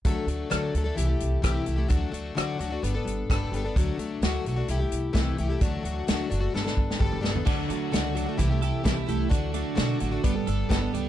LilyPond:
<<
  \new Staff \with { instrumentName = "Twelve-string acoustic guitar" } { \time 4/4 \key d \major \tempo 4 = 130 <d fis a d' a'>8 <fis d' a'>8 <d fis a d' a'>8 <fis a d' a'>16 <a d' a'>16 <e a e' g'>16 <a e' g'>8. <c e a e' g'>8 <e a e' g'>16 <a e' g'>16 | <d fis a d' fis'>8 <fis a d' fis'>8 <d fis a d' fis'>8 <fis a d' fis'>16 <a d' fis'>16 <g b d' a'>16 <b d' a'>8. <g b d' a'>8 <g b d' a'>16 <b d' a'>16 | <d fis a d' fis'>8 <fis a d' fis'>8 <d fis a d' fis'>8 <fis a d' fis'>16 <a d' fis'>16 <e a e' g'>16 <a e' g'>8. <c e a e' g'>8 <e a e' g'>16 <a e' g'>16 | <d fis a d' fis'>8 <fis a d' fis'>8 <d fis a d' fis'>8 <fis a d' fis'>16 <a d' fis'>16 <g b d' a'>16 <b d' a'>8. <g b d' a'>8 <g b d' a'>16 <b d' a'>16 |
<d fis a d' fis'>8 <fis a d' fis'>8 <d fis a d' fis'>8 <fis a d' fis'>16 <a d' fis'>16 <c e a e' g'>16 <a e' g'>16 <e a e' g'>8 <c e a e' g'>16 <a e' g'>16 <e a e' g'>8 | <d fis a d' fis'>8 <fis a d' fis'>8 <d fis a d' fis'>8 <fis a d' fis'>16 <a d' fis'>16 <g b d' a'>16 <b d' a'>16 <g b d' a'>8 <g b d' a'>16 <b d' a'>16 <g b d' a'>8 | }
  \new Staff \with { instrumentName = "Clean electric guitar" } { \time 4/4 \key d \major r1 | r1 | r1 | r1 |
d8 d'8 fis'8 d8 c8 a'8 e'8 a8 | d8 d'8 fis'8 d8 g8 a'8 b8 g8 | }
  \new Staff \with { instrumentName = "Upright bass" } { \clef bass \time 4/4 \key d \major d,8 d,8 d,8 d,8 c,8 c,8 c,8 c,8 | d,8 d,8 d,8 d,8 g,,8 g,,8 g,,8 g,,8 | d,8 d,8 d,8 b,,8 c,8 c,8 c,8 c,8 | d,8 d,8 d,8 fis,,8 g,,8 g,,8 g,,8 g,,8 |
d,8 d8 cis,4 c,4 c,8 c,8 | d,4 b,8 a,,8 g,,8 g,,8 g,,8 cis,8 | }
  \new DrumStaff \with { instrumentName = "Drums" } \drummode { \time 4/4 <hh bd>8 hh8 <hh ss>8 hh8 hh8 hh8 <hh bd ss>8 hh8 | <hh bd>8 hh8 <hh ss>8 hh8 hh8 hh8 <hh bd ss>8 hh8 | <hh bd>8 hh8 <hh sn>8 hh8 hh8 hh8 <hh bd sn>8 hh8 | <hh bd>8 hh8 <hh sn>8 hh8 sn16 sn16 bd16 sn16 <bd toml>16 toml16 sn16 tomfh16 |
<cymc bd>8 hh8 <hh sn>8 hh8 <hh bd>8 hh8 <hh bd sn>8 hh8 | <hh bd>8 hh8 <hh sn>8 hh8 <hh bd>8 hh8 <hh bd sn>8 hh8 | }
>>